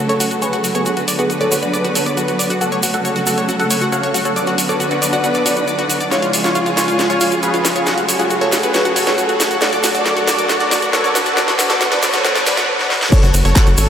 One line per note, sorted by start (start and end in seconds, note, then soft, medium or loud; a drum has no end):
0.00 0.84 C#3 medium
0.00 6.07 F#3 medium
0.00 0.84 A3 medium
0.00 2.58 F#4 medium
0.00 0.84 A4 medium
0.00 riser medium
0.09 0.31 A4 medium
0.09 0.31 C#5 medium
0.09 0.12 C#5 loud
0.09 closed hi-hat medium
0.09 shaker soft
0.20 0.23 F#4 loud
0.20 open hi-hat loud
0.20 shaker medium
0.31 0.36 F#4 medium
0.31 closed hi-hat medium
0.31 shaker soft
0.42 0.63 G#4 medium
0.42 0.63 B4 medium
0.42 0.45 C#5 loud
0.42 closed hi-hat medium
0.42 shaker medium
0.53 0.56 F#4 loud
0.53 closed hi-hat medium
0.53 shaker soft
0.64 0.69 F#4 medium
0.64 open hi-hat medium
0.64 shaker medium
0.75 1.03 B3 medium
0.75 1.03 G#4 loud
0.75 0.78 C#5 loud
0.75 closed hi-hat medium
0.75 shaker soft
0.86 2.59 D3 medium
0.86 2.59 B3 medium
0.86 0.89 F#4 loud
0.86 2.59 B4 medium
0.86 closed hi-hat medium
0.86 shaker medium
0.97 1.02 F#4 medium
0.97 closed hi-hat medium
0.97 shaker soft
1.08 1.11 D5 loud
1.08 open hi-hat loud
1.08 shaker medium
1.19 1.33 B3 medium
1.19 1.22 F#4 loud
1.19 1.33 G#4 medium
1.19 closed hi-hat medium
1.19 shaker soft
1.30 1.35 F#4 medium
1.30 closed hi-hat medium
1.30 shaker soft
1.41 1.55 A4 medium
1.41 1.55 C#5 medium
1.41 1.44 D5 loud
1.41 closed hi-hat medium
1.41 shaker soft
1.52 1.55 F#4 loud
1.52 open hi-hat medium
1.52 shaker loud
1.62 1.84 D4 medium
1.62 1.68 F#4 medium
1.62 1.84 B4 medium
1.62 closed hi-hat medium
1.62 shaker soft
1.74 1.77 D5 loud
1.74 closed hi-hat medium
1.74 shaker soft
1.84 1.88 F#4 loud
1.84 closed hi-hat medium
1.84 shaker soft
1.95 2.01 F#4 medium
1.95 2.17 A4 medium
1.95 2.17 C#5 medium
1.95 open hi-hat loud
1.95 shaker medium
2.06 2.09 D5 loud
2.06 closed hi-hat medium
2.06 shaker soft
2.17 2.20 F#4 medium
2.17 closed hi-hat medium
2.17 shaker medium
2.28 2.33 F#4 medium
2.28 closed hi-hat medium
2.28 shaker soft
2.39 2.42 D5 loud
2.39 open hi-hat medium
2.39 shaker medium
2.50 2.53 F#4 loud
2.50 closed hi-hat medium
2.50 shaker soft
2.61 4.35 C#3 medium
2.61 4.35 A3 medium
2.61 2.66 F#4 medium
2.61 6.08 F#4 medium
2.61 4.35 A4 medium
2.61 2.83 A4 medium
2.61 2.82 F#5 loud
2.61 closed hi-hat medium
2.61 shaker medium
2.72 2.75 C#5 loud
2.72 closed hi-hat medium
2.72 shaker soft
2.83 2.86 F#4 loud
2.83 open hi-hat loud
2.83 shaker loud
2.93 2.99 F#4 medium
2.93 3.15 A4 medium
2.93 3.15 F#5 loud
2.93 closed hi-hat medium
2.93 shaker soft
3.05 3.08 C#5 loud
3.05 closed hi-hat medium
3.05 shaker medium
3.16 3.19 F#4 loud
3.16 closed hi-hat medium
3.16 shaker soft
3.26 3.32 F#4 medium
3.26 3.48 A4 medium
3.26 3.48 F#5 loud
3.26 open hi-hat medium
3.26 shaker loud
3.38 3.41 C#5 medium
3.38 closed hi-hat medium
3.38 shaker soft
3.49 3.52 F#4 loud
3.49 closed hi-hat medium
3.49 shaker medium
3.60 3.65 F#4 medium
3.60 3.81 A4 medium
3.60 3.81 F#5 loud
3.60 closed hi-hat medium
3.60 shaker soft
3.70 3.74 C#5 loud
3.70 open hi-hat loud
3.70 shaker loud
3.81 3.85 F#4 loud
3.81 closed hi-hat medium
3.81 shaker soft
3.92 3.98 F#4 medium
3.92 4.14 C#5 medium
3.92 4.14 F5 medium
3.92 closed hi-hat medium
3.92 shaker medium
4.03 4.07 C#5 loud
4.03 closed hi-hat medium
4.03 shaker soft
4.14 4.17 F#4 loud
4.14 open hi-hat loud
4.14 shaker medium
4.25 4.30 F#4 medium
4.25 4.54 A4 medium
4.25 4.54 C#5 loud
4.25 closed hi-hat medium
4.25 shaker soft
4.36 6.10 D3 medium
4.36 6.10 B3 medium
4.36 6.10 B4 medium
4.36 4.39 D5 loud
4.36 closed hi-hat medium
4.36 shaker medium
4.47 4.50 F#4 loud
4.47 closed hi-hat medium
4.47 shaker soft
4.58 4.63 F#4 medium
4.58 open hi-hat loud
4.58 shaker loud
4.69 4.83 A4 medium
4.69 4.83 C#5 medium
4.69 4.72 D5 loud
4.69 closed hi-hat medium
4.69 shaker soft
4.80 4.83 F#4 loud
4.80 closed hi-hat medium
4.80 shaker medium
4.91 4.96 F#4 medium
4.91 5.05 D5 medium
4.91 5.05 F#5 medium
4.91 closed hi-hat medium
4.91 shaker soft
5.02 5.05 D5 loud
5.02 open hi-hat loud
5.02 shaker loud
5.13 5.16 F#4 loud
5.13 5.34 D5 medium
5.13 5.34 F#5 medium
5.13 closed hi-hat medium
5.13 shaker soft
5.24 5.29 F#4 medium
5.24 closed hi-hat medium
5.24 shaker medium
5.34 5.38 D5 loud
5.34 closed hi-hat medium
5.34 shaker soft
5.46 5.49 F#4 loud
5.46 5.67 B4 medium
5.46 5.67 D5 medium
5.46 open hi-hat loud
5.46 shaker loud
5.56 5.62 F#4 medium
5.56 closed hi-hat medium
5.56 shaker soft
5.68 5.71 D5 loud
5.68 closed hi-hat medium
5.68 shaker soft
5.79 5.82 F#4 loud
5.79 closed hi-hat medium
5.79 shaker soft
5.90 5.95 F#4 medium
5.90 open hi-hat medium
5.90 shaker medium
6.00 6.04 D5 loud
6.00 closed hi-hat medium
6.00 shaker soft
6.11 9.58 C#3 medium
6.11 7.85 F3 medium
6.11 7.85 G#3 medium
6.11 6.33 F4 medium
6.11 7.85 F4 medium
6.11 7.85 G#4 loud
6.11 6.15 C#5 loud
6.11 6.33 C#5 loud
6.11 snare soft
6.11 closed hi-hat medium
6.11 shaker medium
6.22 6.25 F4 loud
6.22 closed hi-hat medium
6.22 shaker soft
6.33 6.38 F4 medium
6.33 open hi-hat loud
6.33 shaker medium
6.44 6.66 F4 medium
6.44 6.47 C#5 loud
6.44 6.66 C#5 loud
6.44 snare soft
6.44 closed hi-hat medium
6.44 shaker soft
6.55 6.58 F4 loud
6.55 closed hi-hat medium
6.55 shaker soft
6.66 6.71 F4 medium
6.66 closed hi-hat medium
6.66 shaker soft
6.77 6.99 F4 medium
6.77 6.80 C#5 loud
6.77 6.99 C#5 medium
6.77 snare medium
6.77 open hi-hat medium
6.77 shaker medium
6.88 6.91 F4 loud
6.88 closed hi-hat medium
6.88 shaker soft
6.99 7.04 F4 medium
6.99 snare medium
6.99 closed hi-hat medium
6.99 shaker medium
7.10 7.31 F4 medium
7.10 7.13 C#5 loud
7.10 7.31 C#5 loud
7.10 closed hi-hat medium
7.10 shaker soft
7.21 7.24 F4 loud
7.21 open hi-hat loud
7.21 shaker medium
7.32 7.37 F4 medium
7.32 closed hi-hat medium
7.32 shaker soft
7.43 7.64 G#4 medium
7.43 7.64 B4 medium
7.43 7.46 C#5 loud
7.43 closed hi-hat medium
7.43 shaker medium
7.54 7.57 F4 loud
7.54 closed hi-hat medium
7.54 shaker soft
7.65 7.70 F4 medium
7.65 snare medium
7.65 open hi-hat medium
7.65 shaker loud
7.75 8.04 F4 medium
7.75 8.04 G#4 loud
7.75 7.79 C#5 loud
7.75 closed hi-hat medium
7.75 shaker soft
7.86 9.60 F#3 medium
7.86 11.34 A3 medium
7.86 7.90 F#4 loud
7.86 9.60 F#4 medium
7.86 11.33 A4 loud
7.86 snare medium
7.86 closed hi-hat medium
7.86 shaker soft
7.97 8.03 F#4 medium
7.97 closed hi-hat medium
7.97 shaker soft
8.08 8.12 C#5 loud
8.08 open hi-hat loud
8.08 shaker medium
8.19 8.34 F4 medium
8.19 8.23 F#4 loud
8.19 8.34 G#4 medium
8.19 closed hi-hat medium
8.19 shaker soft
8.30 8.36 F#4 medium
8.30 closed hi-hat medium
8.30 shaker soft
8.41 8.56 A4 medium
8.41 8.56 C#5 loud
8.41 8.44 C#5 loud
8.41 closed hi-hat medium
8.41 shaker soft
8.52 8.55 F#4 loud
8.52 snare medium
8.52 open hi-hat medium
8.52 shaker medium
8.63 8.68 F#4 medium
8.63 8.85 G#4 medium
8.63 8.85 B4 medium
8.63 closed hi-hat medium
8.63 shaker soft
8.74 8.77 C#5 loud
8.74 snare medium
8.74 closed hi-hat medium
8.74 shaker medium
8.85 8.88 F#4 loud
8.85 closed hi-hat medium
8.85 shaker soft
8.96 9.01 F#4 medium
8.96 9.17 A4 medium
8.96 9.17 C#5 loud
8.96 open hi-hat loud
8.96 shaker medium
9.06 9.10 C#5 loud
9.06 snare medium
9.06 closed hi-hat medium
9.06 shaker soft
9.18 9.21 F#4 medium
9.18 closed hi-hat medium
9.18 shaker soft
9.29 9.34 F#4 medium
9.29 closed hi-hat medium
9.29 shaker soft
9.40 9.43 C#5 loud
9.40 snare medium
9.40 open hi-hat medium
9.40 shaker medium
9.51 9.54 F#4 loud
9.51 closed hi-hat medium
9.51 shaker soft
9.61 13.09 D3 medium
9.61 11.35 F#3 medium
9.61 9.83 F#4 medium
9.61 9.67 F#4 medium
9.61 13.09 F#4 medium
9.61 9.83 D5 loud
9.61 snare medium
9.61 closed hi-hat medium
9.61 shaker soft
9.73 9.76 D5 loud
9.73 closed hi-hat medium
9.73 shaker soft
9.83 9.87 F#4 loud
9.83 snare medium
9.83 open hi-hat loud
9.83 shaker loud
9.94 10.16 F#4 medium
9.94 10.00 F#4 medium
9.94 10.16 D5 loud
9.94 closed hi-hat medium
9.94 shaker soft
10.06 10.09 D5 loud
10.06 snare medium
10.06 closed hi-hat medium
10.06 shaker soft
10.16 10.20 F#4 loud
10.16 closed hi-hat medium
10.16 shaker soft
10.27 10.33 F#4 medium
10.27 10.49 F#4 medium
10.27 10.49 D5 loud
10.27 snare medium
10.27 open hi-hat medium
10.27 shaker loud
10.38 10.42 D5 loud
10.38 closed hi-hat medium
10.38 shaker soft
10.49 10.52 F#4 loud
10.49 snare medium
10.49 closed hi-hat medium
10.49 shaker medium
10.60 10.65 F#4 medium
10.60 10.82 F#4 medium
10.60 10.82 D5 loud
10.60 closed hi-hat medium
10.60 shaker soft
10.71 10.74 D5 loud
10.71 snare medium
10.71 open hi-hat loud
10.71 shaker medium
10.82 10.85 F#4 loud
10.82 closed hi-hat medium
10.82 shaker soft
10.93 10.98 F#4 medium
10.93 11.15 A4 medium
10.93 11.15 C#5 medium
10.93 snare medium
10.93 closed hi-hat medium
10.93 shaker soft
11.04 11.07 D5 loud
11.04 closed hi-hat medium
11.04 shaker soft
11.15 11.18 F#4 loud
11.15 snare medium
11.15 open hi-hat medium
11.15 shaker loud
11.26 11.31 F#4 medium
11.26 11.55 F#4 medium
11.26 11.55 A4 loud
11.26 closed hi-hat medium
11.26 shaker soft
11.37 13.10 F#3 medium
11.37 13.10 B3 medium
11.37 13.10 B4 loud
11.37 11.40 D5 loud
11.37 snare medium
11.37 closed hi-hat medium
11.37 shaker soft
11.48 11.51 F#4 loud
11.48 snare medium
11.48 closed hi-hat medium
11.48 shaker soft
11.59 11.64 F#4 medium
11.59 snare medium
11.59 open hi-hat loud
11.59 shaker medium
11.70 11.84 F#4 medium
11.70 11.84 A4 loud
11.70 11.73 D5 loud
11.70 snare medium
11.70 closed hi-hat medium
11.70 shaker soft
11.81 11.84 F#4 loud
11.81 snare loud
11.81 closed hi-hat medium
11.81 shaker medium
11.92 11.97 F#4 medium
11.92 12.06 B4 medium
11.92 12.06 D5 medium
11.92 snare medium
11.92 closed hi-hat medium
11.92 shaker soft
12.02 12.06 D5 loud
12.02 snare loud
12.02 open hi-hat medium
12.02 shaker loud
12.13 12.17 F#4 loud
12.13 12.35 A4 medium
12.13 12.35 C#5 medium
12.13 snare medium
12.13 closed hi-hat medium
12.13 shaker soft
12.24 12.30 F#4 medium
12.24 snare loud
12.24 closed hi-hat medium
12.24 shaker medium
12.35 12.39 D5 loud
12.35 snare medium
12.35 closed hi-hat medium
12.35 shaker soft
12.46 12.68 D4 medium
12.46 12.68 B4 loud
12.46 12.50 D6 medium
12.46 snare loud
12.46 open hi-hat loud
12.46 shaker medium
12.57 12.61 F#4 loud
12.57 snare medium
12.57 closed hi-hat medium
12.57 shaker soft
12.79 snare medium
12.90 snare medium
13.01 snare medium
13.12 13.89 C#3 medium
13.12 13.89 F#3 medium
13.12 13.89 A3 medium
13.12 13.89 F#4 medium
13.12 13.34 A4 medium
13.12 13.89 A4 medium
13.12 13.34 C#5 loud
13.12 13.15 C#5 loud
13.12 kick loud
13.12 closed hi-hat medium
13.12 crash loud
13.12 shaker medium
13.23 13.32 F#1 medium
13.23 13.26 F#4 loud
13.23 closed hi-hat medium
13.23 shaker soft
13.34 13.43 F#1 loud
13.34 13.39 F#4 medium
13.34 open hi-hat loud
13.34 shaker loud
13.45 13.54 F#1 loud
13.45 13.66 A4 medium
13.45 13.48 C#5 loud
13.45 13.66 C#5 loud
13.45 closed hi-hat medium
13.45 shaker soft
13.56 13.59 F#4 loud
13.56 kick loud
13.56 clap loud
13.56 closed hi-hat medium
13.56 shaker medium
13.67 13.76 F#1 medium
13.67 13.72 F#4 medium
13.67 closed hi-hat medium
13.67 shaker soft
13.78 13.87 G#1 loud
13.78 13.89 A4 medium
13.78 13.81 C#5 loud
13.78 13.89 C#5 loud
13.78 open hi-hat loud
13.78 shaker loud